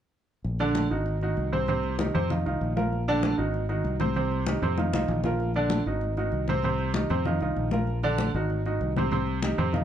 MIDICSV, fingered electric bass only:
0, 0, Header, 1, 2, 480
1, 0, Start_track
1, 0, Key_signature, -2, "major"
1, 0, Tempo, 309757
1, 685, Time_signature, 4, 2, 24, 8
1, 15250, End_track
2, 0, Start_track
2, 0, Title_t, "Fingered electric bass"
2, 0, Program_c, 0, 33
2, 690, Note_on_c, 0, 34, 83
2, 1356, Note_off_c, 0, 34, 0
2, 1408, Note_on_c, 0, 32, 82
2, 2075, Note_off_c, 0, 32, 0
2, 2131, Note_on_c, 0, 36, 83
2, 3240, Note_off_c, 0, 36, 0
2, 3330, Note_on_c, 0, 41, 92
2, 3773, Note_off_c, 0, 41, 0
2, 3806, Note_on_c, 0, 36, 69
2, 4027, Note_off_c, 0, 36, 0
2, 4046, Note_on_c, 0, 34, 90
2, 5158, Note_off_c, 0, 34, 0
2, 5246, Note_on_c, 0, 32, 90
2, 5913, Note_off_c, 0, 32, 0
2, 5955, Note_on_c, 0, 36, 87
2, 7073, Note_off_c, 0, 36, 0
2, 7158, Note_on_c, 0, 41, 93
2, 7606, Note_off_c, 0, 41, 0
2, 7640, Note_on_c, 0, 36, 69
2, 7864, Note_off_c, 0, 36, 0
2, 7884, Note_on_c, 0, 34, 91
2, 8997, Note_off_c, 0, 34, 0
2, 9082, Note_on_c, 0, 32, 84
2, 9752, Note_off_c, 0, 32, 0
2, 9799, Note_on_c, 0, 36, 79
2, 10915, Note_off_c, 0, 36, 0
2, 11004, Note_on_c, 0, 41, 98
2, 11450, Note_off_c, 0, 41, 0
2, 11486, Note_on_c, 0, 36, 73
2, 11708, Note_off_c, 0, 36, 0
2, 11722, Note_on_c, 0, 34, 91
2, 12837, Note_off_c, 0, 34, 0
2, 12928, Note_on_c, 0, 32, 96
2, 13596, Note_off_c, 0, 32, 0
2, 13647, Note_on_c, 0, 36, 89
2, 14761, Note_off_c, 0, 36, 0
2, 14848, Note_on_c, 0, 41, 99
2, 15250, Note_off_c, 0, 41, 0
2, 15250, End_track
0, 0, End_of_file